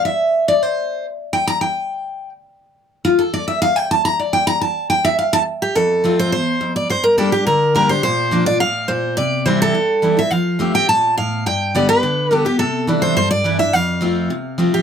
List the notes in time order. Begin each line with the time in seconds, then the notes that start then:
0.05 E5
0.48 D5
0.63 C5
1.33 G5
1.47 A#5
1.61 G5
3.05 F4
3.19 A4
3.34 D5
3.48 E5
3.62 F5
3.76 G5
3.91 A5
4.05 A#5
4.19 D5
4.33 G5
4.47 A#5
4.61 A5
4.90 G5
5.05 E5
5.19 F5
5.33 A5
5.62 G4
5.75 F2 A4
6.04 F3 A3 C4 F4
6.19 C5
6.32 E2 C5
6.61 F2
6.76 D5
6.90 G2 C5
7.04 A#4
7.18 G3 A#3 D4 G4 A4
7.32 D4 G4
7.47 D3 A#4
7.75 G3 A#3 D4 G4 A#4
7.89 D4 G4 C5
8.03 A#2 C5
8.31 F3 A#3 D4 F4
8.46 D4 F4 D5
8.60 A2 F5
8.88 A#2 C5
9.17 C3 D5
9.45 E3 G3 C4 E4 C5
9.62 A4
9.75 G2
10.02 E3 G3 C4 E4
10.17 C4 E4 E5
10.31 F3 F5
10.59 F3 A3 C4 G4
10.74 C4 G4 G5
10.89 A#2 A5
11.18 A2 F5
11.46 G2 G5
11.75 D3 G3 B3 G4 D5
11.88 B3 G4 B4
12.03 D3
12.31 D3 G3 B3 G4 A4
12.45 B3 G4
12.59 C3 A4
12.87 E3 G3 D4 E4
13.02 C5
13.16 G2 C5
13.31 D5
13.44 E3 G3 D4 E4
13.59 D4 E4 E5
13.73 F2 F5
14.01 F3 A3 C4 F4
14.30 C3
14.58 F3 A3 C4 F4
14.74 G4